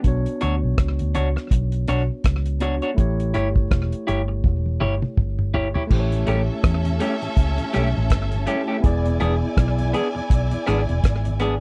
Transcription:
0.01 B1 B3 D4 F#4, kick, closed hi-hat
0.08 C#5
0.26 closed hi-hat
0.41 D2 D4 F#4 C#5, closed hi-hat
0.64 B1
0.78 C#2, kick, cross-stick, closed hi-hat
0.99 D2, closed hi-hat
1.15 C#2 D4 F#4 C#5, closed hi-hat
1.36 muted clean electric guitar stroke, cross-stick
1.51 B1, kick, closed hi-hat
1.72 closed hi-hat
1.88 B1 D4 F#4 C#5, cross-stick, closed hi-hat
2.24 C#2, kick, cross-stick, closed hi-hat
2.46 closed hi-hat
2.59 B3 D4 F#4 C#5, closed hi-hat
2.82 D4 F#4 C#5, closed hi-hat
2.94 A3 E4, kick, closed hi-hat
2.98 A1 G4 C#5
3.20 closed hi-hat
3.34 G1 E4 G4 C#5, closed hi-hat
3.56 kick
3.71 E1, kick, cross-stick, closed hi-hat
3.92 closed hi-hat
4.07 G1 E4 G4 C#5, closed hi-hat
4.28 muted clean electric guitar stroke
4.44 E1, kick, high tom
4.66 high tom
4.80 G1 E4 G4 C#5, mid tom
5.02 mid tom
5.17 G1, kick, mid tom
5.39 mid tom
5.54 E4 G4 C#5, floor tom
5.74 E4 G4 C#5, floor tom
5.87 A3 C#4 E4 A4 E5, kick, crash
5.91 A1 G4 C5
6.00 C#5
6.12 A2 E3, closed hi-hat
6.27 A1 G3 A3 C#4 G4, closed hi-hat
6.48 A2 E3
6.64 E2, kick, cross-stick, closed hi-hat
6.85 A2 E3, closed hi-hat
7.00 G3 A3 C#4 G4, closed hi-hat
7.22 A2 E3, muted clean electric guitar stroke, closed hi-hat
7.37 C#2, kick, closed hi-hat
7.58 A2 E3, closed hi-hat
7.73 B1 G3 A3 C#4 G4, cross-stick, closed hi-hat
7.95 A1 A2 E3
8.10 kick, cross-stick, closed hi-hat
8.32 A2 E3, closed hi-hat
8.46 G3 A3 C#4 E4 G4 E5, closed hi-hat
8.68 A3 C#4 G4
8.80 B3 E4 G#4 D5 G#5, kick, closed hi-hat
8.85 E1 D5
9.06 E2 B2, closed hi-hat
9.20 E1 E3 G#3 B3 D4 G#4, closed hi-hat
9.42 E2 B2
9.57 B1, kick, cross-stick, closed hi-hat
9.79 E2 B2, closed hi-hat
9.93 E3 G#3 B3 D4 G#4, closed hi-hat
10.15 E2 B2, muted clean electric guitar stroke
10.30 B1, kick, closed hi-hat
10.51 E2 B2, closed hi-hat
10.66 G#1 E3 G#3 B3 D4 G#4, cross-stick, closed hi-hat
10.89 E1 E2 B2, closed hi-hat
11.04 G#1, kick, cross-stick, closed hi-hat
11.25 E2 B2, closed hi-hat
11.40 E3 G#3 B3 D4 G#4, closed hi-hat

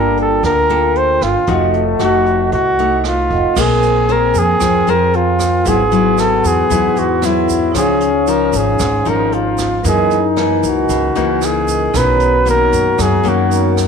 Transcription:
Already playing: G1 G3 A#3 D4 F4 A4 A#4 G5
0.17 A4, closed hi-hat
0.43 D2 D3 A#4, kick, cross-stick, closed hi-hat
0.68 A#3 F4 A4 G5, closed hi-hat
0.95 C5, closed hi-hat
1.21 G1 F4, cross-stick, closed hi-hat
1.47 F1 F3 A3 D#4 F#4 A4 D#5, kick, closed hi-hat
1.51 F#5
1.74 closed hi-hat
1.99 F1 A3 D#4 F#4, cross-stick, closed hi-hat
2.26 closed hi-hat
2.52 C2 C3 F#4, kick, closed hi-hat
2.79 A3 D#4, closed hi-hat
3.04 F4, cross-stick, closed hi-hat
3.29 F1 F4 A4 D#5 F#5, kick, closed hi-hat
3.54 A#1 A#3 C4 G#4 A#4 C5, kick, cross-stick, crash, shaker
3.60 G#4
3.82 closed hi-hat, shaker
4.08 G#4 A#4 C5, closed hi-hat
4.35 F2 G#4, kick, closed hi-hat, shaker
4.60 F2 F3, kick, cross-stick, closed hi-hat, shaker
4.87 F2 G#4 A#4 C5, closed hi-hat, shaker
5.13 F4, closed hi-hat
5.39 kick, cross-stick, closed hi-hat, shaker
5.63 G#1 G#2 F#3 B3 C4 E4 G#4 C6, kick, closed hi-hat, shaker
5.69 G#4 F#5
5.92 F#3 E4, closed hi-hat, shaker
6.18 A4, cross-stick, closed hi-hat, shaker
6.44 E2 G#4, kick, closed hi-hat, shaker
6.70 E2 G#2 F#3 E4, kick, closed hi-hat, shaker
6.95 E2 E4 F#4 G#4 F#5 C6, closed hi-hat, shaker
7.22 F#3 E4, cross-stick, closed hi-hat, shaker
7.49 kick, closed hi-hat, shaker
7.72 C#2 C#3 F3 C#4 D#4 C5, kick, cross-stick, closed hi-hat, shaker
7.76 C#4 G#4 F5
8.00 closed hi-hat, shaker
8.27 F3 D#4 A#4, closed hi-hat, shaker
8.53 G#1 G#4, kick, closed hi-hat, shaker
8.79 G#1 G#2, kick, cross-stick, closed hi-hat, shaker
9.05 G#1 F3 D#4 A#4, closed hi-hat, shaker
9.32 F4, closed hi-hat
9.58 kick, cross-stick, closed hi-hat, shaker
9.83 F#2 E3 A#3 D#4 A#4 D#5 G#5, kick, closed hi-hat, shaker
9.88 G#4
10.11 closed hi-hat, shaker
10.36 E3 A#3 D#4, cross-stick, closed hi-hat
10.63 C#2, kick, closed hi-hat, shaker
10.67 F#4
10.89 C#2 C#3, kick, closed hi-hat, shaker
11.15 C#2 E3 A#3 D#4, closed hi-hat, shaker
11.42 G#4, cross-stick, closed hi-hat, shaker
11.68 kick, closed hi-hat, shaker
11.91 B1 B2 D#3 B3 C#4 D#4 F#4 C#5, kick, cross-stick, closed hi-hat, shaker
11.97 B4 A#5
12.20 closed hi-hat, shaker
12.45 D#3 A#3 C#4, closed hi-hat, shaker
12.50 A#4
12.73 F#2, kick, closed hi-hat, shaker
12.98 F#2 G#4, kick, cross-stick, closed hi-hat, shaker
13.23 F#2 D#3 A#3 C#4, closed hi-hat, shaker
13.28 F#4
13.49 B3 D#4 C#5 A#5, closed hi-hat, shaker
13.77 kick, cross-stick, closed hi-hat, shaker

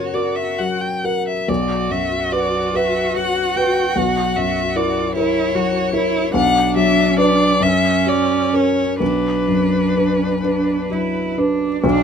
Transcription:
Already playing: F#2 C#3 F#4 A#4 C#5
0.14 F#4 A#4 D5
0.35 E5
0.58 F#3 F#5
0.81 G5
1.04 F#4 A#4 F#5
1.27 E5
1.48 B1 F#4 D5
1.90 F#2 E5
2.32 F#4 B4 D5
2.74 F#4 B4 E5
3.15 F#3 F#5
3.56 F#4 B4 G5
3.96 B1 F#5
4.36 F#2 E5
4.76 E4 A#4 D5
5.15 E4 A#4 C#5
5.55 F#3 F#4
5.93 E4 A#4
6.34 B1 D4 F#5
6.76 F#3 E5
7.17 D4 B4 D5
7.61 F#2 C#4 E5
8.06 F#3 D5
8.53 C#4 A#4 C#5
9.00 B1 D4 B4
9.48 F#2
9.97 D4 B4
10.43 D4 B4
10.90 F#3 E4
11.38 D4 B4
11.82 B1 B2 D4

